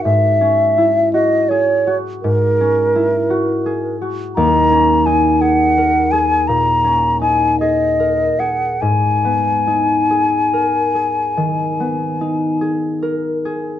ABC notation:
X:1
M:12/8
L:1/8
Q:3/8=54
K:G#m
V:1 name="Flute"
e3 d c z A4- A z | a2 g f2 g a2 g d2 f | g8- g z3 |]
V:2 name="Harp"
[G,,CFA] C E F G F G,, C E F G F | D,, C D G A G A,, C D G A G | G,, B, D G A G D, B, D G A G |]